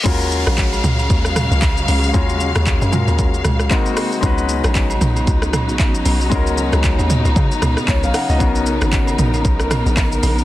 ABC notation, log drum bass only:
X:1
M:4/4
L:1/16
Q:"Swing 16ths" 1/4=115
K:Ebm
V:1 name="Log drum bass" clef=bass
E,,3 B,,,3 D,,2 E,,3 D,,3 D,,2 | E,,3 E,,2 G,,2 E,,3 D,,2 z4 | D,,3 B,,,3 C,,2 D,,3 C,,3 C,,2 | D,,3 D,,2 E,,2 D,, D, z D,, z D,, C,, z D,, |
=B,,,3 A,,,3 ^A,,,2 B,,,3 A,,,3 A,,,2 |]